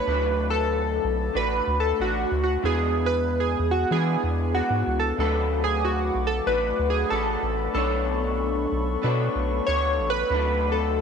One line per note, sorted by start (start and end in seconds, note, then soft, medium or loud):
0.00 0.10 B3 medium
0.00 0.10 A4 medium
0.00 0.52 B4 loud
0.06 1.00 D2 medium
0.06 2.65 D3 medium
0.06 1.36 F#3 medium
0.06 1.08 A3 medium
0.06 1.32 A3 medium
0.06 1.09 D4 medium
0.06 1.34 D4 medium
0.06 1.09 F#4 medium
0.06 1.34 F#4 medium
0.06 1.10 B4 medium
0.06 1.35 B4 medium
0.50 1.38 A4 loud
1.04 1.30 B1 medium
1.33 1.61 A1 loud
1.33 1.97 A3 medium
1.33 2.36 A3 medium
1.33 2.00 D4 medium
1.33 2.36 D4 medium
1.33 2.00 F#4 medium
1.33 2.37 F#4 medium
1.33 2.01 B4 medium
1.33 1.80 B4 medium
1.38 2.38 B4 medium
1.67 1.93 D2 loud
1.80 1.99 A4 medium
1.99 2.25 A1 medium
1.99 2.63 A3 soft
1.99 2.65 D4 medium
1.99 2.42 F#4 medium
1.99 2.65 F#4 medium
1.99 5.21 B4 medium
2.32 2.57 D2 loud
2.44 2.53 F#4 medium
2.62 3.56 E2 loud
2.62 3.89 E3 medium
2.62 3.64 G#3 medium
2.62 3.91 B3 medium
2.62 3.64 D4 medium
2.62 3.92 D4 medium
2.62 3.65 E4 medium
2.62 3.09 G#4 medium
2.62 3.65 B4 medium
2.66 3.92 G#4 medium
3.06 3.39 B4 medium
3.40 3.72 G#4 medium
3.59 3.85 E2 medium
3.71 3.93 F#4 medium
3.91 4.54 E3 medium
3.91 4.17 E3 loud
3.91 4.92 G#3 medium
3.91 4.55 B3 medium
3.91 4.92 D4 medium
3.91 4.56 D4 medium
3.91 4.93 E4 medium
3.91 4.58 G#4 medium
3.91 4.56 G#4 medium
3.91 4.93 B4 medium
4.24 4.62 E2 medium
4.55 5.18 E3 medium
4.55 5.19 B3 medium
4.55 5.20 D4 medium
4.55 4.99 F#4 medium
4.55 5.20 G#4 medium
4.70 4.84 G#2 medium
4.87 5.13 C#2 medium
5.00 5.09 A4 medium
5.17 6.11 D2 loud
5.17 7.74 D3 medium
5.17 7.75 F#3 medium
5.17 6.20 A3 medium
5.17 6.46 A3 medium
5.17 6.20 D4 medium
5.17 6.47 D4 medium
5.17 6.20 F#4 medium
5.17 6.48 F#4 medium
5.17 11.01 A4 medium
5.17 5.64 A4 medium
5.17 7.72 F#5 medium
5.17 10.26 B5 medium
5.17 7.72 D6 medium
5.21 6.21 B4 medium
5.21 6.49 B4 medium
5.64 5.85 G#4 medium
5.85 6.28 F#4 medium
6.15 6.41 B1 medium
6.27 6.36 A4 medium
6.46 6.72 A1 loud
6.46 7.10 A3 medium
6.46 7.48 A3 medium
6.46 7.48 D4 medium
6.46 7.12 D4 medium
6.46 7.49 F#4 medium
6.46 7.12 F#4 medium
6.46 6.91 B4 medium
6.46 7.49 B4 medium
6.46 7.13 B4 medium
6.79 7.05 D2 loud
6.90 7.12 G#4 medium
7.10 7.37 A1 medium
7.10 7.76 A3 medium
7.10 7.77 D4 medium
7.10 7.77 F#4 medium
7.10 7.73 A4 medium
7.10 7.78 B4 medium
7.43 7.68 A1 medium
7.74 8.67 B1 loud
7.74 9.02 B2 medium
7.74 10.32 F#3 medium
7.74 9.03 A3 medium
7.74 8.75 B3 medium
7.74 8.76 D4 medium
7.74 10.28 D4 medium
7.74 9.03 D4 medium
7.74 9.04 F#4 medium
7.74 8.98 A4 medium
7.74 8.76 A4 medium
7.74 8.76 C#5 medium
7.74 10.28 C#6 medium
7.78 9.04 C#5 medium
8.72 8.97 B1 medium
9.02 9.29 B2 loud
9.02 9.67 A3 medium
9.02 10.03 B3 medium
9.02 10.03 D4 medium
9.02 9.68 D4 medium
9.02 9.68 F#4 medium
9.02 10.03 A4 medium
9.02 10.04 B4 medium
9.02 9.68 C#5 medium
9.35 9.61 B1 loud
9.67 10.00 D2 medium
9.67 10.32 A3 medium
9.67 10.33 D4 medium
9.67 10.34 F#4 medium
9.67 10.06 C#5 loud
9.67 10.32 C#5 medium
9.98 10.24 A1 medium
10.10 10.75 B4 medium
10.29 11.01 D2 loud
10.29 11.01 D3 medium
10.29 11.01 F#3 medium
10.29 11.01 A3 medium
10.29 11.01 D4 medium
10.29 11.01 F#4 medium
10.29 11.01 B4 medium
10.29 11.01 F#5 medium
10.29 11.01 B5 medium
10.29 11.01 D6 medium
10.33 11.01 D4 medium
10.33 11.01 F#4 medium
10.33 11.01 B4 medium
10.72 11.01 A4 medium